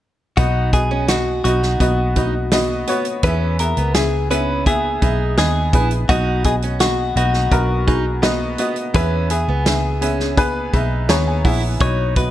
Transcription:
0.37 fingered electric bass B1, upright piano B2 B3 F#4 D#5, steel-string acoustic guitar D#4, clean electric guitar F#4, kick, closed hi-hat
0.73 upright piano B3 F#4 D#5, clean electric guitar G#4, kick, closed hi-hat
0.91 steel-string acoustic guitar C#4
1.08 upright piano B3 F#4 D#5, clean electric guitar F#4, snare, closed hi-hat
1.44 fingered electric bass B1, upright piano B3 F#4 D#5, steel-string acoustic guitar D#4, clean electric guitar F#4, closed hi-hat
1.63 snare
1.80 fingered electric bass B1, upright piano B3 F#4 D#5, kick, closed hi-hat
2.16 upright piano B3 F#4 D#5, steel-string acoustic guitar D#4, kick, closed hi-hat
2.52 upright piano B3 F#4 D#5, snare, closed hi-hat
2.87 steel-string acoustic guitar B3, upright piano B3 F#4 C#5, closed hi-hat
3.05 closed hi-hat
3.23 fingered electric bass E2, upright piano E3 B3 G#4 E5, steel-string acoustic guitar C#4, clean electric guitar B4, kick, closed hi-hat
3.59 upright piano B3 G#4 E5, clean electric guitar A#4, closed hi-hat
3.77 fingered electric bass C#2, steel-string acoustic guitar B3, closed hi-hat
3.94 upright piano B3 G#4 E5, clean electric guitar G#4, snare, closed hi-hat
4.30 upright piano B3 G#4 E5, steel-string acoustic guitar C#4, clean electric guitar B4, closed hi-hat
4.66 upright piano B3 G#4 E5, clean electric guitar G#4, kick, closed hi-hat
5.02 fingered electric bass B1, upright piano B3 G#4 E5, steel-string acoustic guitar D#4, kick, closed hi-hat
5.37 fingered electric bass D#2, upright piano B3 G#4 D#5, clean electric guitar G#4, snare, closed hi-hat
5.73 fingered electric bass A#1, upright piano B3 G#4 B4, steel-string acoustic guitar E4, kick, closed hi-hat
5.91 closed hi-hat
6.09 fingered electric bass B1, upright piano B2 B3 F#4 D#5, steel-string acoustic guitar D#4, clean electric guitar F#4, kick, closed hi-hat
6.44 upright piano B3 F#4 D#5, clean electric guitar G#4, kick, closed hi-hat
6.62 steel-string acoustic guitar C#4, closed hi-hat
6.80 upright piano B3 F#4 D#5, clean electric guitar F#4, snare, closed hi-hat
7.16 fingered electric bass B1, upright piano B3 F#4 D#5, steel-string acoustic guitar D#4, clean electric guitar F#4, closed hi-hat
7.34 snare
7.51 fingered electric bass B1, upright piano B3 F#4 A#4, kick, closed hi-hat
7.87 upright piano B3 F#4 G#4, steel-string acoustic guitar D#4, kick, closed hi-hat
8.22 upright piano B3 F#4 D#5, snare, closed hi-hat
8.58 upright piano B3 F#4 D#5, steel-string acoustic guitar B3, closed hi-hat
8.76 closed hi-hat
8.94 fingered electric bass E2, upright piano E3 B3 G#4 E5, steel-string acoustic guitar C#4, clean electric guitar B4, kick, closed hi-hat
9.30 upright piano B3 G#4 E5, clean electric guitar G#4, closed hi-hat
9.48 fingered electric bass C#2, steel-string acoustic guitar B3
9.65 upright piano B3 G#4 E5, snare, closed hi-hat
10.01 upright piano B3 G#4 E5, steel-string acoustic guitar C#4, closed hi-hat
10.20 snare
10.37 upright piano B3 G#4 B4, kick, closed hi-hat
10.73 fingered electric bass B1, upright piano B3 G#4 E5 B5, steel-string acoustic guitar D#4, kick, closed hi-hat
11.09 fingered electric bass D#2, upright piano B3 G#4 C#5 A#5, snare, closed hi-hat
11.27 upright piano G#5
11.44 fingered electric bass A#1, upright piano B3 G#4 E5 F#5, steel-string acoustic guitar E4, kick, open hi-hat
11.80 fingered electric bass B1, upright piano B2 B3 F#4 D#5, steel-string acoustic guitar D#4, clean electric guitar C#5, kick, closed hi-hat
12.16 upright piano B3 F#4 D#5, clean electric guitar B4, kick, closed hi-hat

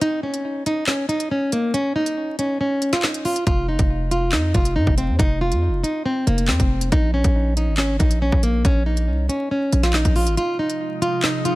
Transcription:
0.01 nylon-string guitar D#4, closed hi-hat
0.23 nylon-string guitar C#4
0.34 closed hi-hat
0.66 nylon-string guitar D#4, closed hi-hat
0.87 nylon-string guitar C#4, snare, clap
1.09 nylon-string guitar D#4, closed hi-hat
1.20 closed hi-hat
1.31 nylon-string guitar C#4
1.52 nylon-string guitar A#3, closed hi-hat
1.74 nylon-string guitar C#4, closed hi-hat
1.96 nylon-string guitar D#4
2.06 closed hi-hat
2.39 nylon-string guitar C#4, closed hi-hat
2.61 nylon-string guitar C#4
2.82 closed hi-hat
2.93 nylon-string guitar F4, snare, closed hi-hat
3.03 nylon-string guitar D#4, snare, clap
3.14 closed hi-hat
3.25 nylon-string guitar F4, open hi-hat
3.36 closed hi-hat
3.47 808-style bass F1, nylon-string guitar F4, kick, closed hi-hat
3.68 808-style bass F#1, nylon-string guitar D#4
3.79 808-style bass F1, kick, closed hi-hat
4.11 nylon-string guitar F4, closed hi-hat
4.32 808-style bass F2, nylon-string guitar D#4, snare, clap
4.54 808-style bass F1, nylon-string guitar F4, kick, closed hi-hat
4.65 closed hi-hat
4.76 808-style bass G#2, nylon-string guitar D#4
4.87 808-style bass F1, kick
4.98 nylon-string guitar C4, closed hi-hat
5.09 808-style bass F2
5.19 808-style bass F1, nylon-string guitar D#4, kick, closed hi-hat
5.41 nylon-string guitar F4
5.52 808-style bass F2, closed hi-hat
5.68 808-style bass F1
5.83 nylon-string guitar D#4, closed hi-hat
6.06 nylon-string guitar C4
6.27 808-style bass F1, nylon-string guitar A#3, closed hi-hat
6.38 closed hi-hat
6.48 808-style bass F2, nylon-string guitar C4, snare, clap
6.60 808-style bass F1, kick, closed hi-hat
6.81 closed hi-hat
6.92 808-style bass A#1, nylon-string guitar D#4, kick, closed hi-hat
7.14 nylon-string guitar C#4
7.24 808-style bass A#1, kick, closed hi-hat
7.57 nylon-string guitar D#4, closed hi-hat
7.68 808-style bass G#1
7.78 nylon-string guitar C#4, snare, clap
7.99 808-style bass A#1, nylon-string guitar D#4, kick, closed hi-hat
8.11 closed hi-hat
8.22 nylon-string guitar C#4
8.32 808-style bass A#1, kick
8.43 nylon-string guitar A#3, closed hi-hat
8.65 808-style bass A#1, nylon-string guitar C#4, kick, closed hi-hat
8.86 nylon-string guitar D#4
8.97 closed hi-hat
9.08 808-style bass C2
9.29 nylon-string guitar C#4, closed hi-hat
9.51 nylon-string guitar C#4
9.73 808-style bass A#1, closed hi-hat
9.83 nylon-string guitar F4, snare, closed hi-hat
9.93 nylon-string guitar D#4, snare, clap
10.05 808-style bass A#1, kick, closed hi-hat
10.16 nylon-string guitar F4, open hi-hat
10.27 808-style bass G#1, closed hi-hat
10.37 ambient pad C3 F3 G#3 D#4, nylon-string guitar F4, closed hi-hat
10.59 nylon-string guitar D#4
10.70 closed hi-hat
11.02 nylon-string guitar F4, closed hi-hat
11.23 nylon-string guitar D#4, snare, clap
11.45 nylon-string guitar F4, closed hi-hat

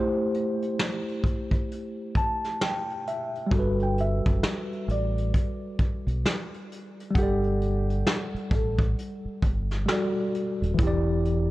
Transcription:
Already playing: tine electric piano A3 E4 G4 C5
0.34 closed hi-hat
0.62 closed hi-hat
0.79 snare, closed hi-hat
1.09 closed hi-hat
1.24 kick, closed hi-hat
1.51 kick, closed hi-hat
1.71 closed hi-hat
2.15 tine electric piano A5, kick, closed hi-hat
2.44 snare, closed hi-hat
2.61 tine electric piano G5, snare, closed hi-hat
2.90 closed hi-hat
3.07 tine electric piano E5, closed hi-hat
3.35 closed hi-hat
3.47 tine electric piano G3
3.51 fingered electric bass G1, tine electric piano F#4 A4, kick, closed hi-hat
3.59 tine electric piano B4
3.80 felt piano G5, closed hi-hat
3.98 felt piano E5, closed hi-hat
4.26 fingered electric bass F#1, kick, closed hi-hat
4.43 snare, closed hi-hat
4.73 closed hi-hat
4.88 fingered electric bass A1, felt piano D5, closed hi-hat
5.18 closed hi-hat
5.34 kick, closed hi-hat
5.79 kick, closed hi-hat
6.07 fingered electric bass B1, closed hi-hat
6.25 snare, closed hi-hat
6.54 closed hi-hat
6.72 closed hi-hat
7.00 closed hi-hat
7.11 tine electric piano G3
7.15 fingered electric bass G1, felt piano G4, tine electric piano F#5, kick, closed hi-hat
7.19 tine electric piano A4 D5
7.44 closed hi-hat
7.62 closed hi-hat
7.90 closed hi-hat
8.07 snare, closed hi-hat
8.34 muted fingered electric bass stroke, closed hi-hat
8.51 fingered electric bass A1, felt piano A4, kick, closed hi-hat
8.79 kick, closed hi-hat
8.98 closed hi-hat
9.25 muted fingered electric bass stroke
9.42 fingered electric bass G1, kick, closed hi-hat
9.71 snare, closed hi-hat
9.86 tine electric piano G3 F#4, snare, closed hi-hat
9.90 tine electric piano A4 D5
10.35 closed hi-hat
10.62 fingered electric bass D#1, closed hi-hat
10.74 tine electric piano E3
10.78 fingered electric bass E1, tine electric piano E4, kick, closed hi-hat
10.83 tine electric piano G4
10.87 tine electric piano D5
11.25 closed hi-hat

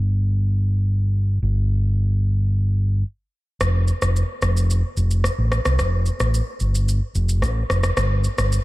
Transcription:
Already playing: fingered electric bass G1
1.42 fingered electric bass G1
3.61 fingered electric bass F1, cross-stick, shaker
3.88 shaker
4.02 fingered electric bass F1, cross-stick, shaker
4.16 shaker
4.42 fingered electric bass F1, cross-stick, shaker
4.57 shaker
4.70 shaker
4.97 fingered electric bass F1, shaker
5.11 shaker
5.24 cross-stick, shaker
5.38 fingered electric bass A1
5.52 cross-stick, shaker
5.65 fingered electric bass C2, cross-stick, shaker
5.79 fingered electric bass F1, cross-stick, shaker
6.06 shaker
6.20 fingered electric bass A1, cross-stick, shaker
6.34 shaker
6.60 fingered electric bass G1, shaker
6.75 shaker
6.88 shaker
7.15 fingered electric bass F1, shaker
7.29 shaker
7.42 fingered electric bass A1, cross-stick, shaker
7.70 fingered electric bass F1, cross-stick, shaker
7.83 cross-stick, shaker
7.97 fingered electric bass G1, cross-stick, shaker
8.24 shaker
8.38 fingered electric bass G1, cross-stick, shaker
8.52 shaker

